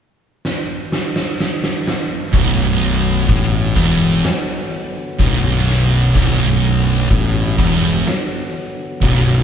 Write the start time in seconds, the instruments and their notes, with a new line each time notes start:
0.45 snare
0.92 snare
1.16 snare
1.40 snare
1.64 snare
1.87 snare
2.33 fingered electric bass B0, distorted electric guitar B1, tonewheel organ D3 F#3 B3, kick, open hi-hat
3.29 fingered electric bass A1, distorted electric guitar A2, kick, open hi-hat
3.76 fingered electric bass E1, distorted electric guitar E2, kick
4.24 snare, open hi-hat
5.19 fingered electric bass B0, distorted electric guitar B1, kick, open hi-hat
5.68 snare
6.15 fingered electric bass B0, distorted electric guitar B1, kick, open hi-hat
7.09 fingered electric bass A1, distorted electric guitar A2, kick, open hi-hat
7.58 fingered electric bass E1, distorted electric guitar E2, kick
8.06 snare, open hi-hat
9.01 fingered electric bass B0, distorted electric guitar B1, kick, open hi-hat